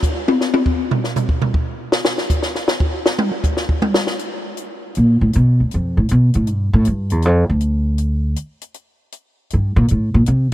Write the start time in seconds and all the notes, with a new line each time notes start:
0.03 kick, hi-hat pedal
0.28 high tom
0.41 snare
0.54 high tom
0.66 kick
0.91 floor tom
1.04 snare
1.16 floor tom, hi-hat pedal
1.29 kick
1.42 floor tom
1.54 kick
1.92 snare
2.05 snare
2.18 snare
2.30 kick, hi-hat pedal
2.42 snare
2.55 snare
2.68 snare
2.80 kick
3.06 snare
3.19 mid tom
3.31 mid tom
3.44 kick, hi-hat pedal
3.57 snare
3.69 kick
3.82 mid tom
3.94 snare
4.07 snare
4.19 closed hi-hat
4.57 closed hi-hat
4.95 A#2, closed hi-hat
5.21 A2
5.33 B2, closed hi-hat
5.60 D2
5.71 F2, closed hi-hat
5.97 A2
6.09 B2, closed hi-hat
6.34 A2, closed hi-hat
6.47 G2, closed hi-hat
6.73 A2
6.85 G2, closed hi-hat
7.10 E2, closed hi-hat
7.22 F2, closed hi-hat
7.50 D2
7.61 closed hi-hat
7.98 closed hi-hat
8.36 closed hi-hat
8.61 closed hi-hat
8.74 closed hi-hat
9.12 closed hi-hat
9.50 G2, closed hi-hat
9.76 A#2
9.88 A2, closed hi-hat
10.14 A#2
10.26 C3, closed hi-hat